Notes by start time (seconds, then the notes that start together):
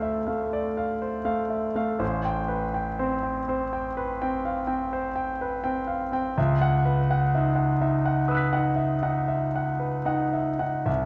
Already playing: D2 A3 C5 D5 F5 A5 E6 F6 C7
0.02 E5
0.27 A3 F5
0.53 D5
0.77 F5
1.02 C5
1.25 A3 F5
1.50 E5
1.75 A3 F5
1.99 A1 C5
2.25 G5
2.48 B4
2.74 G5
2.99 C4 C5
3.23 G5
3.48 C4 C5
3.73 G5
3.97 B4
4.22 C4 G5
4.45 F5
4.67 C4 G5
4.93 C5
5.16 G5
5.41 B4
5.64 C4 G5
5.87 F5
6.12 C4 G5
6.38 C#2 E5
6.61 F#5
6.85 B4
7.11 F#5
7.35 D#4 E5
7.55 F#5
7.81 D#4 E5
8.05 F#5
8.28 B4 D#6 E6
8.35 F#6 B6
8.53 D#4 F#5
8.76 E5
9.03 D#4 F#5
9.28 E5
9.56 F#5
9.80 B4
10.05 D#4 F#5
10.33 E5
10.59 D#4 F#5
10.86 C2 E5